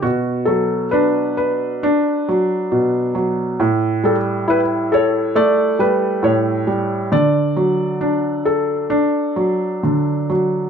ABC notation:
X:1
M:4/4
L:1/8
Q:1/4=67
K:D
V:1 name="Felt piano"
F A B4 z2 | z A B c d B c2 | d6 z2 |]
V:2 name="Felt piano" clef=bass
B,, F, D B D F, B,, F, | A,, G, E A A, G, A,, G, | D, F, D A D F, D, F, |]